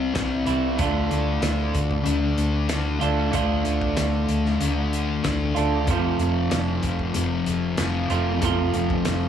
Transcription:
Already playing: C2 C3 E3 G3 C4 E4
0.14 C2 C3 G3 C4, kick, snare, closed hi-hat
0.46 C2 E3 G3 C4 E4, closed hi-hat
0.50 C3
0.77 D2 D3 A3 D4 F4, kick, closed hi-hat
1.10 D2 A3 D4, closed hi-hat
1.41 D2, snare, closed hi-hat
1.75 D2, kick, closed hi-hat
1.91 kick
2.04 D2 D3 A3 D4, closed hi-hat
2.38 D2, closed hi-hat
2.68 D2 D3 A3 D4, snare, closed hi-hat
2.99 D2 A3 D4 F4, closed hi-hat
3.04 D3 A3
3.32 D2 D3 A3 D4 F4, kick, closed hi-hat
3.64 D2 A3 D4, closed hi-hat
3.81 kick
3.97 D2, snare, closed hi-hat
4.28 D2, closed hi-hat
4.46 snare
4.60 D2 D3 A3 D4, closed hi-hat
4.93 closed hi-hat
5.23 D2 D3 A3 D4, kick, snare, closed hi-hat
5.55 D2 D3 A3 D4 F4, closed hi-hat
5.87 F1 F2 C3 F3 A3 C4 F4, kick, closed hi-hat
6.19 F1 C3 F3, closed hi-hat
6.51 F1, snare, closed hi-hat
6.83 F1, kick, closed hi-hat
6.99 kick
7.14 F1 F2 C3 F3, closed hi-hat
7.46 F1, closed hi-hat
7.77 F1 F2 C3 F3, snare, closed hi-hat
8.10 F1 C3 F3 A3 C4 F4, closed hi-hat
8.14 F2
8.41 F1 F2 C3 F3 A3 C4 F4, kick, closed hi-hat
8.74 F1 C3 F3, closed hi-hat
8.90 kick
9.05 F1, snare, closed hi-hat

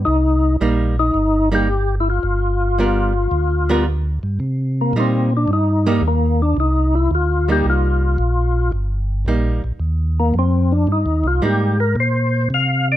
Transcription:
0.05 C2 D#4
0.61 A#1 G3 A#3 D#4
0.99 D#4
1.14 G1
1.52 G3 A#3 D#4 G4
2.00 E4
2.10 F4
2.23 G1
2.79 G3 B3 F4 A#4
3.31 D2
3.69 G3 B3 F4 A#4
4.23 G2
4.40 C3
4.81 A#3
4.93 A#2 G3 A#3 D#4
5.00 C4
5.37 D4
5.48 G2
5.53 D#4
5.87 G3 A#3 D#4
6.01 D#2
6.08 A#3
6.42 D4
6.57 C2 D#4
6.95 E4
7.11 D2 F4
7.48 G3 A#3 D#4 G4
7.64 C2
7.70 F4
8.18 A#1
8.72 G1
9.26 A#1 G3 A#3 D#4
9.64 A#1
9.79 D#2
10.20 A#3
10.34 F2
10.39 C4
10.72 D4
10.87 G2
10.92 D#4
11.06 D#2
11.24 C2 F4
11.42 G#2 G3 A#3 D#4 G4
11.80 A#4
11.96 A#2
12.00 C5
12.50 C3
12.54 F5
12.92 D5

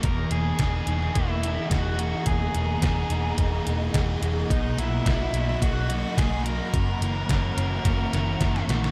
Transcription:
0.03 E1 E2 G#4 A#4 D#5 F#5 A#5, kick, closed hi-hat
0.30 E1 E3 A#3 G#4, closed hi-hat
0.59 E1 D#4 G#4, kick, snare, closed hi-hat
0.87 E1 E3 D#4, closed hi-hat
1.02 snare
1.14 E1 A#3 E4, kick, closed hi-hat
1.42 E3 D#4, closed hi-hat
1.70 E1 A#3 F#4 G#4, kick, snare, closed hi-hat
1.98 E3 A#3, closed hi-hat
2.26 E1 E2 G#4, kick, closed hi-hat
2.54 E1 E3 A#3, closed hi-hat
2.82 E1 D#4 G#4, kick, snare, closed hi-hat
3.10 E1 E3 D#4, closed hi-hat
3.37 E1 A#3, kick, closed hi-hat
3.65 E1 E3 D#4, closed hi-hat
3.94 E1 A#3 G#4, kick, snare, closed hi-hat
4.21 E1 E3 A#3, closed hi-hat
4.50 B1 B2 A#3 D#4 B5, kick, closed hi-hat
4.77 B1 F#3 A#3 E4, closed hi-hat
5.05 B1 D#4 F#4, kick, snare, closed hi-hat
5.33 B1 F#3 D#4, closed hi-hat
5.49 snare
5.60 B1 A#3 F#4, kick, closed hi-hat
5.89 F#3 D#4, closed hi-hat
6.17 B1 A#3 F#4 G#4, kick, snare, closed hi-hat
6.44 F#3 A#3 A#4, closed hi-hat
6.73 F#1 F#2 E5 C#6, kick, closed hi-hat
7.01 F#1 E3 A#3, closed hi-hat
7.28 F#1 C#4 F#4, kick, snare, closed hi-hat
7.56 F#1 E3 C#4, closed hi-hat
7.84 F#1 A#3, kick, snare, closed hi-hat
8.12 F#1 E3 C#4, snare, closed hi-hat
8.40 F#1 A#3 F#4, kick, snare, closed hi-hat
8.56 snare
8.68 A#1 E3 A#3, snare, closed hi-hat
8.84 snare

